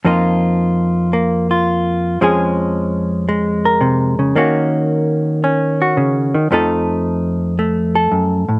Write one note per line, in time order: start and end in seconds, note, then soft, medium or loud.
0.05 2.20 F2 medium
0.05 2.18 F3 soft
0.05 1.13 A#3 soft
0.05 2.19 D#4 soft
0.05 1.50 F4 medium
1.13 2.22 A#3 medium
1.51 2.21 F4 soft
2.21 4.35 F2 medium
2.21 4.34 F3 soft
2.21 3.27 G#3 soft
2.21 4.34 C#4 soft
2.21 3.65 G#4 medium
3.29 4.35 G#3 medium
3.65 4.33 A#4 soft
3.81 4.18 C3 medium
4.19 4.35 C#3 medium
4.36 6.33 D#3 medium
4.36 6.48 A#3 medium
4.36 5.43 C#4 soft
4.36 5.80 F#4 medium
5.44 6.48 C#4 medium
5.82 6.49 F#4 soft
5.97 6.34 C#3 medium
6.34 6.50 D#3 medium
6.51 8.11 F2 medium
6.51 8.60 F3 soft
6.51 7.58 A3 medium
6.51 8.60 D#4 soft
6.51 7.94 A4 medium
7.59 8.60 A3 soft
7.95 8.60 A4 soft
8.12 8.48 F#2 soft
8.49 8.60 A2 soft